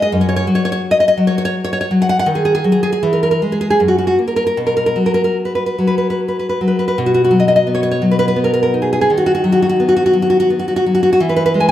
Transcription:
0.02 D#5
0.12 F#2
0.21 C#5
0.29 C#5
0.36 C#5
0.47 F#3
0.55 C#5
0.65 C#5
0.72 C#5
0.91 D#5
1.00 D#5
1.08 D#5
1.17 F#3
1.27 C#5
1.38 C#5
1.45 C#5
1.64 C#5
1.73 C#5
1.81 C#5
1.91 F#3
2.02 F#5
2.09 F#5
2.19 F#5
2.26 D#3
2.35 G#4
2.45 G#4
2.55 G#4
2.64 F#3
2.72 G#4
2.83 G#4
2.92 G#4
3.03 E3
3.13 A#4
3.23 A#4
3.31 A#4
3.42 G#3
3.52 G#4
3.61 G#4
3.70 G#4
3.80 F#2
3.88 F#4
3.98 F#4
4.07 F#4
4.19 A#3
4.28 A#4
4.36 A#4
4.47 A#4
4.57 B2
4.67 A#4
4.77 A#4
4.86 A#4
4.96 F#3
5.06 A#4
5.14 A#4
5.24 A#4
5.45 B4
5.55 B4
5.66 B4
5.78 F#3
5.87 B4
5.98 B4
6.10 B4
6.28 B4
6.39 B4
6.49 B4
6.61 F#3
6.68 B4
6.79 B4
6.88 B4
6.98 B2
7.06 F#4
7.14 F#4
7.24 F#4
7.31 F#3
7.40 D#5
7.48 D#5
7.56 D#5
7.67 B3
7.75 C#5
7.83 C#5
7.91 C#5
8.02 F#3
8.11 B4
8.19 B4
8.28 B4
8.36 B3
8.44 A#4
8.54 A#4
8.63 A#4
8.74 D#4
8.82 G#4
8.93 G#4
9.01 G#4
9.10 D#3
9.17 F#4
9.26 F#4
9.35 F#4
9.44 F#3
9.52 F#4
9.62 F#4
9.69 F#4
9.80 B3
9.89 F#4
9.97 F#4
10.06 F#4
10.13 F#3
10.22 F#4
10.30 F#4
10.40 F#4
10.50 B3
10.59 F#4
10.68 F#4
10.76 F#4
10.86 F#3
10.95 F#4
11.03 F#4
11.13 F#4
11.20 E3
11.29 B4
11.36 B4
11.46 B4
11.54 G#3
11.60 G#5

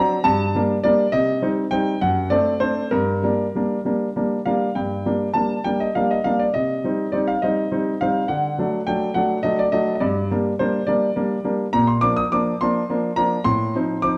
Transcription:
Already playing: F#3 C4 D4 A#5
0.24 G2 A5
0.55 G3 A#3 D4
0.84 G3 A#3 D4 D5
1.12 C3 D#5
1.42 G3 C4 D#4
1.71 G3 C4 D#4 G5
2.01 F#2 F#5
2.30 A3 C4 D4 D5
2.60 A3 C4 D4 C5
2.91 G2 A#4
3.23 G3 A#3 D4
3.55 G3 A#3 D4
3.85 G3 A#3 D4
4.16 G3 A#3 D4
4.46 G3 A#3 D4 F5
4.75 G2 G5
5.06 G3 A#3 D4
5.34 G3 A#3 D4 A5
5.64 G3 A#3 D4 G5
5.80 D#5
5.95 G3 A#3 D4 F5
6.11 D#5
6.24 G3 A#3 D4 F5
6.39 D5
6.54 C3 D#5
6.84 G3 C4 D#4
7.12 G3 C4 D#4 D5
7.28 F5
7.42 G3 C4 D#4 D#5
7.72 G3 C4 D#4
8.01 G3 C4 D#4 F5
8.28 D3 F#5
8.58 F#3 A3 D4
8.87 F#3 A3 D4 G5
9.14 F#3 A3 D4 F#5
9.43 F#3 A3 D4 D#5
9.59 D5
9.72 F#3 A3 D4 D#5
9.95 D#5
10.00 G2 D5
10.31 G3 A#3 D4
10.59 G3 A#3 D4 C5
10.87 G3 A#3 D4 D5
11.16 G3 A#3 D4
11.44 G3 A#3 D4
11.73 A#2 A#5
11.87 C6
12.01 F3 A#3 D4 D6
12.16 D#6
12.32 F3 A#3 D4 D6
12.61 F3 A#3 D4 C6
12.89 F3 A#3 D4
13.16 F3 A#3 D4 A#5
13.44 A2 C6
13.75 F3 C4 D#4
14.02 F3 C4 D#4 D6

